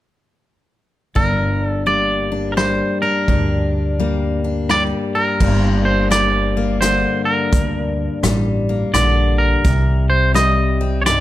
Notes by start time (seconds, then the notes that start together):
1.15 G1 G2 D4 A#4, kick
1.67 A4
1.86 G3 A#3 D5
2.32 D4
2.52 A#4
2.57 G3 C5, cross-stick
3.02 D4 A#4
3.28 D2 G2 D4, kick
4.00 G3 A#3
4.44 D4
4.70 G3 D5, cross-stick
5.15 A#4
5.40 G1 G2 G3 A#3 D4, kick, crash
5.85 C5
6.10 G3 D5, cross-stick, closed hi-hat
6.57 A#3
6.81 D3 D4 C5, cross-stick, closed hi-hat
7.25 A#4
7.52 D2 G2, kick, closed hi-hat
8.23 A1 G3, cross-stick, closed hi-hat
8.69 A#3
8.94 A#1 D3 D4 D5, cross-stick, closed hi-hat
9.38 A#4
9.64 C2 C3, kick, closed hi-hat
10.10 C5
10.34 G3 D#5, cross-stick, closed hi-hat
10.81 C4
11.02 C#5
11.06 G2 D#4 D5, cross-stick, closed hi-hat